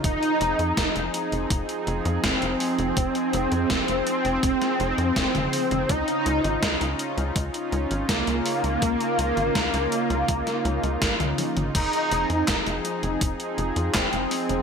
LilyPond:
<<
  \new Staff \with { instrumentName = "Analog synth lead" } { \time 4/4 \key f \minor \tempo 4 = 82 ees'4. r4. c'4~ | c'1 | ees'4. r4. bes4~ | bes1 |
ees'4. r4. c'4 | }
  \new Staff \with { instrumentName = "Analog synth pad" } { \time 4/4 \key f \minor << { <f c' aes'>1~ | <f c' aes'>1 | <des des' f'>1~ | <des des' f'>1 |
<f c' aes'>1 | } \\ { ees'1~ | ees'1 | ees'1~ | ees'1~ |
ees'1 | } >> }
  \new Staff \with { instrumentName = "Analog synth bass" } { \clef bass \time 4/4 \key f \minor f,,16 r16 f,,16 f,16 f,,16 f,,16 r16 f,,16 f,,16 r16 f,,16 f,16 f,,16 f,,16 r16 f,,16 | f,,16 r16 f,,16 f,16 f,,16 f,,16 r16 f,,16 f,,16 r16 f,,16 f,16 f,,16 f,,16 r16 f,,16 | des,16 r16 des,16 aes,,16 des,16 des,16 r16 des,16 des,16 r16 des,16 aes,,16 des,16 des,16 r16 des,16 | des,16 r16 des,16 aes,,16 des,16 des,16 r16 des,16 des,16 r16 des,16 des,16 aes,,16 des,16 r16 aes,,16 |
f,,16 r16 f,,16 f,16 f,,16 f,,16 r16 f,,16 f,,16 r16 f,,16 f,16 f,,16 f,,16 r16 f,,16 | }
  \new DrumStaff \with { instrumentName = "Drums" } \drummode { \time 4/4 <hh bd>16 hh16 hh16 hh16 <hh bd sn>16 hh16 hh16 hh16 <hh bd>16 hh16 hh16 hh16 <hh bd sn>16 hh16 hho16 hh16 | <hh bd>16 hh16 hh16 hh16 <hh bd sn>16 hh16 hh16 hh16 <hh bd>16 <hh sn>16 hh16 hh16 <hh bd sn>16 <hh toml>16 hho16 <hh toml>16 | <hh bd>16 hh16 hh16 hh16 <hh bd sn>16 hh16 hh16 hh16 <hh bd>16 hh16 hh16 hh16 <hh bd sn>16 hh16 hho16 hh16 | <hh bd>16 hh16 hh16 <hh toml>16 <hh bd sn>16 hh16 hh16 hh16 <hh bd>16 <hh sn>16 hh16 hh16 <hh bd sn>16 <hh toml>16 <hho tommh>16 <hh toml>16 |
<cymc hh bd>16 hh16 hh16 hh16 <hc hh bd sn>16 hh16 hh16 hh16 <hh bd>16 hh16 hh16 hh16 <hc hh bd sn>16 hh16 hho16 hh16 | }
>>